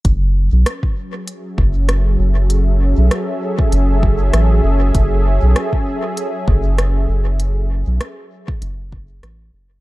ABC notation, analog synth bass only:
X:1
M:4/4
L:1/16
Q:"Swing 16ths" 1/4=98
K:F#m
V:1 name="Analog synth bass" clef=bass
F,,,3 B,,, z6 F,,,4 F,,,2- | F,,,3 B,,, z4 F,,,4 A,,,2 F,,,2 | F,,,3 B,,, z6 F,,,4 F,,,2- | F,,,3 B,,, z4 F,,,4 A,,,2 F,,,2 |]